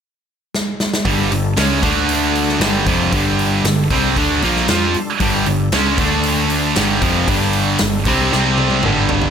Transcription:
0.54 snare
0.80 snare
0.94 snare
1.04 picked electric bass G1, distorted electric guitar G2 D3 G3, tonewheel organ G3 D4 A4, kick, open hi-hat
1.32 picked electric bass G1, distorted electric guitar G2 D3, open hi-hat
1.56 picked electric bass C#2, distorted electric guitar C#3 G#3 C#4, snare, open hi-hat
1.81 picked electric bass D2, distorted electric guitar D3 A3 D4, tonewheel organ D5, kick, open hi-hat
2.09 open hi-hat
2.35 open hi-hat
2.49 snare
2.59 picked electric bass G1, distorted electric guitar G2 D3 G3, tonewheel organ G3 D4 A4, snare, open hi-hat
2.86 picked electric bass F1, distorted electric guitar F2 C3 F3, kick, open hi-hat
3.12 picked electric bass G1, distorted electric guitar G2 D3 G3, kick, open hi-hat
3.39 open hi-hat
3.64 picked electric bass G1, distorted electric guitar G2 D3, snare, open hi-hat
3.90 picked electric bass C2, distorted electric guitar C3 G3 C4, kick, open hi-hat
4.16 picked electric bass D2, distorted electric guitar D3 A3 D4, kick, open hi-hat
4.42 picked electric bass A#1, distorted electric guitar A#2 F3 A#3, open hi-hat
4.57 snare
4.68 picked electric bass F2, distorted electric guitar F3 C4 F4, snare, open hi-hat
4.94 muted picked electric bass stroke, muted distorted electric guitar stroke, open hi-hat
5.20 picked electric bass G1, distorted electric guitar G2 D3 G3, kick, open hi-hat
5.46 picked electric bass G1, distorted electric guitar G2 D3, open hi-hat
5.72 picked electric bass C#2, distorted electric guitar C#3 G#3 C#4, snare, open hi-hat
5.97 picked electric bass D2, distorted electric guitar D3 A3 D4, tonewheel organ D5, kick, open hi-hat
6.23 open hi-hat
6.50 open hi-hat
6.75 picked electric bass G1, distorted electric guitar G2 D3 G3, tonewheel organ G3 D4, snare, open hi-hat
7.01 picked electric bass F1, distorted electric guitar F2 C3 F3, kick, open hi-hat
7.27 picked electric bass G1, distorted electric guitar G2 D3 G3, kick, open hi-hat
7.53 open hi-hat
7.78 picked electric bass G1, distorted electric guitar G2 D3, snare, open hi-hat
8.05 picked electric bass C2, distorted electric guitar C3 G3 C4, kick, open hi-hat
8.31 picked electric bass C2, distorted electric guitar C3 G3 C4, tonewheel organ C4 G4 D5, snare
8.58 high tom
8.70 high tom
8.83 picked electric bass G1, distorted electric guitar G2 D3 G3, tonewheel organ G3 D4 A4, mid tom
9.09 floor tom
9.22 floor tom

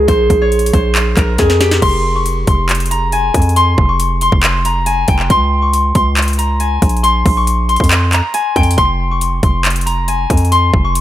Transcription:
Already playing: harp G#4 A#4
0.08 808-style bass A#1, harp C5, kick, closed hi-hat
0.30 808-style bass A#1, kick, closed hi-hat
0.42 harp C#5
0.52 closed hi-hat
0.59 closed hi-hat
0.66 closed hi-hat
0.73 808-style bass A#1, harp C5, kick, closed hi-hat
0.95 clap, closed hi-hat
1.17 808-style bass A#1, harp A#4, kick, clap, closed hi-hat
1.38 808-style bass F2, harp G#4, kick, snare, closed hi-hat
1.50 snare
1.60 harp G4, snare, closed hi-hat
1.71 snare, closed hi-hat
1.82 808-style bass F1, harp C6, kick, closed hi-hat, crash
2.16 harp C#6
2.26 closed hi-hat
2.47 808-style bass F1, harp C6, kick, closed hi-hat
2.69 clap, closed hi-hat
2.75 closed hi-hat
2.80 closed hi-hat
2.86 closed hi-hat
2.91 harp A#5, closed hi-hat
3.12 harp G#5, closed hi-hat
3.34 808-style bass F2, kick, closed hi-hat
3.42 closed hi-hat
3.49 closed hi-hat
3.56 harp C6, closed hi-hat
3.78 808-style bass F1, kick
3.89 harp C#6
4.00 closed hi-hat
4.21 harp C6, closed hi-hat
4.32 808-style bass F1, kick
4.43 clap, closed hi-hat
4.65 harp A#5, closed hi-hat
4.86 harp G#5, closed hi-hat
5.08 808-style bass F1, harp G5, kick, closed hi-hat
5.19 clap
5.30 808-style bass C#2, harp C6, kick, closed hi-hat
5.62 harp C#6
5.73 closed hi-hat
5.95 808-style bass C#2, harp C6, kick, closed hi-hat
6.17 clap, closed hi-hat
6.22 closed hi-hat
6.28 closed hi-hat
6.33 closed hi-hat
6.38 harp A#5, closed hi-hat
6.60 harp G#5, closed hi-hat
6.82 808-style bass A#1, kick, closed hi-hat
6.89 closed hi-hat
6.97 closed hi-hat
7.03 harp C6, closed hi-hat
7.26 808-style bass A#1, kick, open hi-hat
7.37 harp C#6
7.47 closed hi-hat
7.69 harp C6, closed hi-hat
7.76 808-style bass F2, kick, closed hi-hat
7.84 closed hi-hat
7.91 clap, closed hi-hat
8.13 harp A#5, clap, closed hi-hat
8.34 harp G#5, closed hi-hat
8.56 808-style bass F2, harp G5, kick, closed hi-hat
8.63 closed hi-hat
8.71 closed hi-hat
8.78 808-style bass F1, harp C6, kick, closed hi-hat
9.11 harp C#6
9.21 closed hi-hat
9.43 808-style bass F1, harp C6, kick, closed hi-hat
9.65 clap, closed hi-hat
9.70 closed hi-hat
9.76 closed hi-hat
9.81 closed hi-hat
9.86 harp A#5, closed hi-hat
10.08 harp G#5, closed hi-hat
10.30 808-style bass F2, kick, closed hi-hat
10.37 closed hi-hat
10.45 closed hi-hat
10.52 harp C6, closed hi-hat
10.74 808-style bass F1, kick
10.85 harp C#6
10.95 closed hi-hat

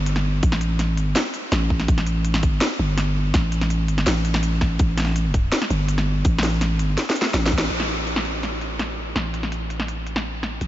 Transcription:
Already playing: 808-style bass G1
0.06 closed hi-hat
0.16 snare
0.43 808-style bass A1, kick, closed hi-hat
0.52 snare
0.61 closed hi-hat
0.79 snare, closed hi-hat
0.93 808-style bass G#1
0.97 closed hi-hat
1.16 snare, closed hi-hat
1.34 closed hi-hat
1.52 808-style bass A1, snare, closed hi-hat
1.70 kick
1.80 snare
1.88 808-style bass A1, kick, closed hi-hat
1.98 snare
2.07 closed hi-hat
2.25 closed hi-hat
2.34 snare
2.39 808-style bass G#1
2.43 kick, closed hi-hat
2.61 snare, closed hi-hat
2.79 808-style bass G1
2.98 snare, closed hi-hat
3.34 808-style bass A1, kick, snare, closed hi-hat
3.52 closed hi-hat
3.61 snare
3.70 closed hi-hat
3.84 808-style bass G#1
3.88 closed hi-hat
3.98 snare
4.07 808-style bass A1, snare, closed hi-hat
4.25 closed hi-hat
4.34 snare
4.43 closed hi-hat
4.61 kick, snare
4.79 808-style bass A1, kick, closed hi-hat
4.98 snare, closed hi-hat
5.00 snare
5.02 snare
5.05 snare
5.07 snare
5.09 snare
5.11 snare
5.14 snare, closed hi-hat
5.34 kick, closed hi-hat
5.52 snare, closed hi-hat
5.62 snare
5.70 808-style bass G1, closed hi-hat
5.89 closed hi-hat
5.98 snare
6.25 808-style bass A1, kick, closed hi-hat
6.39 snare
6.43 snare, closed hi-hat
6.61 snare, closed hi-hat
6.75 808-style bass G#1
6.79 closed hi-hat
6.98 snare, closed hi-hat
7.10 snare
7.16 closed hi-hat
7.22 snare
7.34 808-style bass A1, snare, closed hi-hat
7.46 snare
7.52 kick, closed hi-hat
7.58 snare
7.70 808-style bass A1, closed hi-hat
7.80 snare
7.89 closed hi-hat
8.07 closed hi-hat
8.16 snare
8.25 closed hi-hat
8.43 snare, closed hi-hat
8.61 closed hi-hat
8.79 snare, closed hi-hat
9.16 808-style bass A1, snare, closed hi-hat
9.34 closed hi-hat
9.43 snare
9.52 closed hi-hat
9.70 closed hi-hat
9.80 snare
9.88 closed hi-hat
10.07 closed hi-hat
10.16 snare
10.43 snare
10.61 808-style bass A1, closed hi-hat

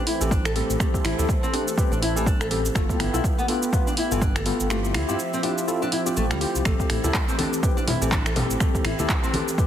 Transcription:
Already playing: analog synth pad E3 A3 C4 G4
0.07 nylon-string guitar E4, open hi-hat
0.21 detuned saw bass A1, nylon-string guitar E3, tine electric piano C4 G4 A4, shaker
0.31 nylon-string guitar D4, kick, shaker
0.45 nylon-string guitar A4, finger snap, shaker
0.56 nylon-string guitar G3, tine electric piano C4 G4 A4, open hi-hat
0.70 detuned saw bass A1, shaker
0.80 nylon-string guitar A3, tine electric piano C4 G4 A4, analog synth pad A4, finger snap, kick, shaker
0.94 kick, shaker
1.04 detuned saw bass A1, nylon-string guitar E4, finger snap, open hi-hat
1.18 detuned saw bass D2, tine electric piano C4 G4 A4, nylon-string guitar E4, shaker
1.29 kick, shaker
1.43 nylon-string guitar C4, shaker
1.53 tine electric piano C4 G4 A4, nylon-string guitar D4, open hi-hat
1.68 shaker
1.78 tine electric piano C4 G4 B4, kick, shaker
1.91 detuned saw bass A1, nylon-string guitar D4, shaker
2.02 nylon-string guitar E4, open hi-hat
2.16 nylon-string guitar E3, tine electric piano C4 G4 A4, shaker
2.26 nylon-string guitar D4, kick, shaker
2.40 detuned saw bass A1, nylon-string guitar A4, finger snap, shaker
2.51 nylon-string guitar G3, tine electric piano C4 G4 A4, open hi-hat
2.66 shaker
2.75 detuned saw bass G1, nylon-string guitar A3, tine electric piano B3 F4 A4, analog synth pad B3 G4, finger snap, kick, shaker
2.89 kick, shaker
2.99 detuned saw bass G1, nylon-string guitar E4, finger snap, open hi-hat
3.13 detuned saw bass B1, tine electric piano B3 F4 A4, nylon-string guitar E4, shaker
3.24 kick, shaker
3.38 nylon-string guitar B3, shaker
3.48 tine electric piano B3 F4 A4, nylon-string guitar D4, open hi-hat
3.63 shaker
3.73 tine electric piano B3 F4 B4, kick, shaker
3.87 nylon-string guitar D4, shaker
3.97 nylon-string guitar E4, open hi-hat
4.11 detuned saw bass G1, nylon-string guitar E3, tine electric piano B3 F4 A4, shaker
4.22 nylon-string guitar D4, kick, shaker
4.36 nylon-string guitar A4, finger snap, shaker
4.46 nylon-string guitar G3, tine electric piano B3 F4 A4, open hi-hat
4.60 detuned saw bass G1, shaker
4.70 analog synth pad F3 C4 E5, nylon-string guitar A3, tine electric piano C4 E4 F4 G4, finger snap, shaker
4.85 shaker
4.94 detuned saw bass D2, nylon-string guitar E4, finger snap, open hi-hat
5.09 detuned saw bass G2, tine electric piano C4 E4 F4 G4, nylon-string guitar E4, shaker
5.19 shaker
5.33 nylon-string guitar C4, shaker
5.43 tine electric piano C4 E4 F4 G4, nylon-string guitar D4, open hi-hat
5.58 shaker
5.68 tine electric piano C4 E4 F4 A4, shaker
5.82 nylon-string guitar D4, shaker
5.92 nylon-string guitar E4, open hi-hat
6.06 tine electric piano C4 E4 F4 G4, nylon-string guitar D4, shaker
6.17 detuned saw bass A1, nylon-string guitar A3, shaker
6.31 detuned saw bass D2, nylon-string guitar G3, finger snap, shaker
6.41 tine electric piano C4 E4 F4 G4, nylon-string guitar G4, open hi-hat
6.55 detuned saw bass C2, shaker
6.65 detuned saw bass A1, analog synth pad E3 A3, nylon-string guitar A3, tine electric piano C4 A4, finger snap, kick, shaker
6.80 kick, shaker
6.90 detuned saw bass A1, nylon-string guitar E4, finger snap, open hi-hat
7.04 detuned saw bass D2, tine electric piano C4 G4 A4, nylon-string guitar E4, high conga, shaker
7.14 kick, clap, shaker
7.28 nylon-string guitar C4, shaker
7.38 tine electric piano C4 G4 A4, nylon-string guitar D4, open hi-hat, high conga
7.53 shaker
7.63 tine electric piano C4 G4 B4, kick, shaker
7.77 nylon-string guitar D4, shaker
7.87 nylon-string guitar E4, open hi-hat, high conga, low conga
8.01 detuned saw bass A1, nylon-string guitar E3, tine electric piano C4 G4 A4, shaker
8.12 nylon-string guitar D4, kick, clap, shaker
8.26 nylon-string guitar A4, finger snap, shaker
8.36 nylon-string guitar G3, tine electric piano C4 G4 A4, open hi-hat, low conga
8.50 detuned saw bass A1, shaker
8.60 nylon-string guitar A3, tine electric piano C4 G4 A4, finger snap, kick, shaker
8.75 kick, shaker
8.85 detuned saw bass A1, nylon-string guitar E4, finger snap, open hi-hat
8.99 detuned saw bass D2, tine electric piano C4 G4 A4, nylon-string guitar E4, high conga, shaker
9.09 kick, clap, shaker
9.23 nylon-string guitar C4, shaker
9.33 tine electric piano C4 G4 A4, nylon-string guitar D4, open hi-hat, high conga
9.48 shaker
9.58 tine electric piano C4 G4 B4, kick, shaker

